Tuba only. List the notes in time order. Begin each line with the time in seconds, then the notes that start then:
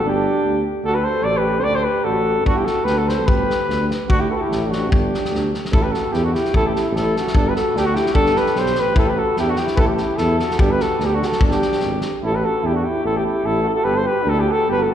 0.04 G1
0.43 D2
0.83 D2
1.22 A1
1.64 D2
2.04 A1
2.43 G1
2.84 D2
3.26 G1
3.67 D2
4.07 D2
4.48 A1
4.91 G1
5.31 D2
5.71 A1
6.12 E2
6.53 A1
6.91 A1
7.33 G1
7.74 D2
8.16 G1
8.56 B1
8.78 A1
8.97 A1
9.37 E2
9.77 A1
10.18 E2
10.58 G1
10.98 D2
11.38 G1
11.80 G#1
12.22 A1
12.62 E2
13.04 A1
13.44 A1
13.84 G1
14.25 D2
14.66 G1